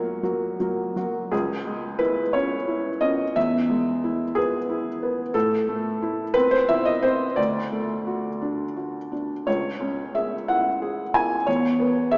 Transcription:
Already playing: F#2 F#3 A#3 F#4 C#5
0.23 F#3 A#3 F#4
0.60 F#3 A#3 F#4
0.96 F#3 A#3 F#4
1.31 C#2 G#4
1.66 G#3
1.99 E4 B4
2.33 C#4 C#5
2.68 E4
3.01 C#4 D#5
3.36 E2 E5
3.69 G#3
4.04 E4
4.35 B3 G#4
4.69 E4
5.03 B3
5.34 A2 A4
5.68 A3
6.02 E4
6.34 C4 B4
6.51 C5
6.69 E4 E5
6.85 D#5
7.03 C4 C5
7.36 D2 D5
7.72 A3
8.07 F#4
8.42 D4
8.76 F#4
9.12 D4
9.47 C#2 C#5
9.81 C#4
10.15 G#4 E5
10.48 E4 F#5
10.82 G#4
11.14 E4 G#5
11.47 E2 C#5
11.80 B3
12.11 G#4 E5

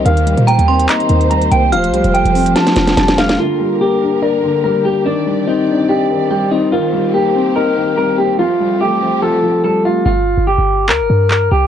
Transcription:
Already playing: D#3 G4
0.06 D#2 D#3 A#3 C5 F5, closed hi-hat
0.17 closed hi-hat
0.26 G3, closed hi-hat
0.38 A#2, closed hi-hat
0.47 A#3 G5 A#5, closed hi-hat
0.58 D#2, closed hi-hat
0.68 C4 C6
0.80 closed hi-hat
0.89 D#4 A#5, clap, closed hi-hat
1.00 closed hi-hat
1.09 D#2 D#3, closed hi-hat
1.21 closed hi-hat
1.31 G3 A#5, closed hi-hat
1.42 closed hi-hat
1.52 C2 A#3 G5, closed hi-hat
1.72 D#1 F3 A3 G4 F5 F6, closed hi-hat
1.84 closed hi-hat
1.88 C2
1.93 G3, closed hi-hat
2.04 F1, closed hi-hat
2.14 A3 G5, closed hi-hat
2.25 F1, closed hi-hat
2.35 C4, open hi-hat
2.46 closed hi-hat
2.56 F4 A5, snare, closed hi-hat
2.67 snare, closed hi-hat
2.76 F1 F3, snare, closed hi-hat
2.88 snare, closed hi-hat
2.97 F1 G3 A5, snare, closed hi-hat
3.08 snare, closed hi-hat
3.18 A3 F5, snare, closed hi-hat
3.29 snare, closed hi-hat
3.39 D3 A#3 F4 G4 A#4
3.60 G3
3.81 A#3 G4
4.02 D4
4.22 A#4 D5
4.43 D3
4.64 G3 A#4
4.85 A#3 G4
5.06 D#3 C4 D4 D5
5.26 G3
5.47 C4 D#4
5.68 D4
5.89 D#4 G4
6.10 D#3
6.31 G3 G4
6.52 C4 D#4
6.72 D#3 A#3 F4 G4
6.93 G3
7.14 A#3 G4
7.35 C4
7.56 D#4 A#4
7.77 D#3
7.97 G3 A#4
8.18 A#3 G4
8.39 F3 A3 F4 G4
8.60 G3
8.81 A3 G4
9.02 C4
9.22 F4 A4
9.43 F3
9.64 G3 A4
9.85 A3 F4
10.06 G1 F4
10.38 G1
10.47 G4
10.58 G1
10.89 D2 A#4, clap
11.00 G1
11.10 G2
11.31 A#4, clap
11.52 C2 G4

